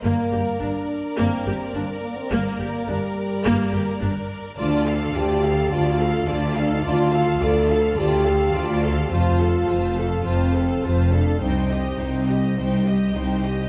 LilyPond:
<<
  \new Staff \with { instrumentName = "Violin section" } { \time 4/4 \key g \minor \tempo 4 = 106 d''1~ | d''1 | a''8 f''8 a''8 f''8 a''8 f''8 a''8 f''8 | a''8 f''8 a''8 f''8 a''8 f''8 a''8 f''8 |
a''8 f''8 a''8 f''8 a''8 f''8 a''8 f''8 | g''8 ees''8 g''8 ees''8 g''8 ees''8 g''8 ees''8 | }
  \new Staff \with { instrumentName = "Violin section" } { \time 4/4 \key g \minor bes'1~ | bes'1 | d''8 f''8 d''8 f''8 d''8 f''8 d''8 f''8 | d''8 f''8 d''8 f''8 d''8 f''8 d''8 f''8 |
c''8 a'8 c''8 a'8 c''8 a'8 c''8 a'8 | c''8 ees''8 c''8 ees''8 c''8 ees''8 c''8 ees''8 | }
  \new Staff \with { instrumentName = "Viola section" } { \time 4/4 \key g \minor bes8 g'8 d'8 r8 bes8 g'8 d'8 r8 | bes8 g'8 d'8 r8 bes8 g'8 d'8 r8 | f'8 a'8 f'8 a'8 f'8 a'8 f'8 a'8 | f'8 a'8 f'8 a'8 f'8 a'8 f'8 a'8 |
f'8 a'8 f'8 a'8 f'8 a'8 f'8 a'8 | ees'8 g'8 ees'8 g'8 ees'8 g'8 ees'8 g'8 | }
  \new Staff \with { instrumentName = "French horn section" } { \time 4/4 \key g \minor bes4 d'4 c'4 bes8 bes16 c'16 | bes4 g2~ g8 r8 | d'4 g'4 f'4 d'8 d'16 ees'16 | f'4 a'4 g'4 f'8 f'16 g'16 |
f'4. f'8 c'4. d'8 | c'2.~ c'8 r8 | }
  \new Staff \with { instrumentName = "Cello section" } { \clef bass \time 4/4 \key g \minor g,8 g,8 g,8 r8 g,8 g,8 g,8 r8 | g,8 g,8 g,8 r8 g,8 g,8 g,8 r8 | d,4 d,4 d,4 d,4 | d,4 d,4 d,4 d,4 |
f,4 f,4 f,4 f,4 | c,4 c,4 c,4 c,4 | }
  \new Staff \with { instrumentName = "Double bass section" } { \clef bass \time 4/4 \key g \minor g,,8 g,,8 g,,8 r8 g,,8 g,,8 g,,8 r8 | g,,8 g,,8 g,,8 r8 g,,8 g,,8 g,,8 r8 | d,4 d,4 d,4 d,4 | d,4 d,4 d,4 d,4 |
f,,4 f,,4 f,,4 f,,4 | c,4 c,4 c,4 c,4 | }
>>